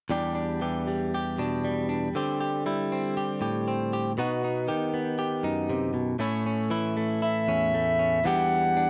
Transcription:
0.10 clean electric guitar E2 G3 D4 G4
0.35 clean electric guitar D4
0.61 clean electric guitar E3 G4
0.87 clean electric guitar G3
1.15 clean electric guitar G4
1.38 clean electric guitar B2 D4
1.65 clean electric guitar G3
1.89 clean electric guitar D4
2.15 clean electric guitar D3 C4 G4
2.40 clean electric guitar G4
2.66 clean electric guitar G3 E4
2.92 clean electric guitar C4
3.17 clean electric guitar G4
3.41 clean electric guitar A2 G4
3.68 clean electric guitar C4
3.93 clean electric guitar G4
4.18 clean electric guitar B2 B3 D#4 F#4
4.44 clean electric guitar D#4
4.68 clean electric guitar D#3 G4
4.94 clean electric guitar B3
5.19 clean electric guitar G4
5.43 clean electric guitar F#2 D#4
5.70 clean electric guitar C3
5.94 clean electric guitar B2
6.19 clean electric guitar A2 A3 C#4 E4
6.46 clean electric guitar C#4
6.70 clean electric guitar E3 E4
6.97 clean electric guitar A3
7.22 clean electric guitar E4, clarinet E5
7.48 clean electric guitar E2 C#4
7.74 clean electric guitar A3
7.99 clean electric guitar C#4
8.24 clean electric guitar E2 E3 G3 D4 G4, clarinet F#5
8.77 clean electric guitar D4

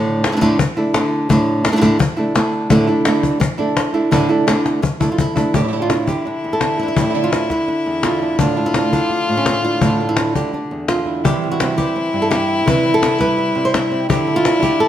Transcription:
Already playing: nylon-string guitar A2 D3 A3 D4 E4
0.24 nylon-string guitar D3 A3 D4 E4, cajon slap
0.28 nylon-string guitar D3 D4 E4
0.32 nylon-string guitar A3 D4 E4
0.37 nylon-string guitar D3 A3 D4 E4
0.41 nylon-string guitar A2 D3 A3 D4 E4, cajon bass
0.59 muted nylon-string guitar stroke, cajon bass
0.77 nylon-string guitar A3 D4 E4, cajon slap
0.94 nylon-string guitar D3 A3 D4 E4, cajon slap
1.29 nylon-string guitar A2 D3 A3 D4 E4, cajon bass
1.64 nylon-string guitar D3 A3 D4 E4, cajon slap
1.69 nylon-string guitar D3 A3 D4 E4
1.73 nylon-string guitar D3 E4
1.77 nylon-string guitar A3 D4 E4
1.81 nylon-string guitar A2 D3 A3 D4 E4, cajon bass
1.99 muted nylon-string guitar stroke, cajon bass
2.17 nylon-string guitar A3 D4 E4, cajon slap
2.35 nylon-string guitar D3 A3 D4 E4, cajon slap
2.53 cajon slap
2.70 nylon-string guitar A2 D3 A3 D4 E4, cajon bass
2.87 nylon-string guitar A3 D4 E4
3.05 nylon-string guitar D3 A3 D4 E4, cajon slap
3.23 cajon bass
3.41 muted nylon-string guitar stroke, cajon bass
3.58 nylon-string guitar A3 D4 E4
3.77 cajon slap
3.94 nylon-string guitar A3 D4 E4
4.11 nylon-string guitar A2 D3 A3 D4 E4, cajon bass
4.29 nylon-string guitar A3 D4 E4
4.47 nylon-string guitar D3 A3 D4 E4, cajon slap
4.66 cajon slap
4.83 muted nylon-string guitar stroke, cajon bass
5.00 nylon-string guitar A3 D4 E4, cajon bass
5.12 nylon-string guitar F4
5.18 nylon-string guitar E4, cajon bass
5.36 nylon-string guitar A3 D4 E4, cajon bass
5.53 nylon-string guitar A2 D3 A3 D4 E4 G4, soprano saxophone E4, cajon bass
5.63 nylon-string guitar D3 A3 D4 E4
5.67 nylon-string guitar D3 A3 D4 E4
5.72 nylon-string guitar A2 D3 A3 D4 E4
5.82 nylon-string guitar F4
5.89 nylon-string guitar A3 D4 E4, cajon slap
6.07 nylon-string guitar D3 G4, cajon bass
6.25 nylon-string guitar D4, muted nylon-string guitar stroke
6.44 nylon-string guitar E2
6.53 nylon-string guitar A4
6.61 nylon-string guitar D3 A3 D4 E4, cajon slap
6.79 nylon-string guitar A3 D4 E4
6.83 nylon-string guitar D4
6.88 nylon-string guitar E4
6.96 nylon-string guitar A2 D3 A3 D4 E4 G4, cajon bass
7.01 nylon-string guitar A3 D4 E4
7.05 nylon-string guitar D3 A3 D4 E4
7.09 nylon-string guitar D3 A3 D4 E4
7.14 nylon-string guitar A2 D3 A3 D4 E4, cajon slap
7.24 nylon-string guitar F4
7.32 nylon-string guitar A3 D4 E4, cajon slap
7.50 nylon-string guitar D3 E4, cajon bass, cajon slap
7.68 nylon-string guitar D4, muted nylon-string guitar stroke
7.86 nylon-string guitar E2
8.03 nylon-string guitar D3 A3 D4 E4 F4, cajon slap
8.21 nylon-string guitar A3 D4 E4
8.38 nylon-string guitar A2 D3 A3 D4 E4, soprano saxophone F4, cajon bass
8.56 nylon-string guitar A3 D4 E4, cajon slap
8.66 nylon-string guitar E4
8.74 nylon-string guitar D3 A3 D4 E4, cajon slap
8.92 nylon-string guitar D3 A3 D4 E4, cajon bass
9.10 muted nylon-string guitar stroke
9.29 nylon-string guitar A2
9.37 nylon-string guitar C#4
9.46 nylon-string guitar A3, cajon slap
9.63 nylon-string guitar A3 D4 E4 F4
9.81 nylon-string guitar A2 D3 A3 D4 E4, cajon bass
9.99 nylon-string guitar A3 D4 E4
10.09 nylon-string guitar E4
10.17 nylon-string guitar D3 A3 D4 E4, cajon slap
10.35 nylon-string guitar D3 A3 D4 E4 G4, cajon bass
10.53 nylon-string guitar D4, muted nylon-string guitar stroke
10.71 nylon-string guitar E2
10.88 nylon-string guitar F4, cajon slap
11.06 nylon-string guitar A3 D4 E4
11.23 nylon-string guitar C3 E3 G3 C4 E4 G4, soprano saxophone E4, cajon bass
11.43 nylon-string guitar G3
11.52 nylon-string guitar F#4
11.60 nylon-string guitar E3 G3 C4 E4, cajon slap
11.77 nylon-string guitar E3 G3 C4 E4 G4, cajon bass
11.96 nylon-string guitar C4, muted nylon-string guitar stroke
12.13 nylon-string guitar G2 G3 C4 E4
12.22 nylon-string guitar A4
12.31 nylon-string guitar G3 C4 E4 G4, cajon slap
12.66 nylon-string guitar C3 E3 G3 C4 E4 B4, cajon bass
12.85 nylon-string guitar C4, cajon slap
12.94 nylon-string guitar A4
13.02 nylon-string guitar E3 G3 C4 E4, cajon slap
13.19 nylon-string guitar G3 C4 E4 B4, cajon bass, cajon slap
13.38 nylon-string guitar E4, muted nylon-string guitar stroke
13.55 nylon-string guitar C3 G3 C4 E4
13.65 nylon-string guitar C5
13.74 nylon-string guitar G3 C4 E4, cajon slap
13.91 nylon-string guitar C4
14.09 nylon-string guitar D3 A3 D4 G4, soprano saxophone E4, cajon bass
14.27 nylon-string guitar D4
14.36 nylon-string guitar F4
14.45 nylon-string guitar A3 D4 F4, cajon slap
14.55 nylon-string guitar D3 A3 D4 F4
14.59 nylon-string guitar D3 A3 D4 F4, cajon bass
14.63 nylon-string guitar D3 A3 D4 F4 G4
14.80 nylon-string guitar A4, muted nylon-string guitar stroke, cajon slap

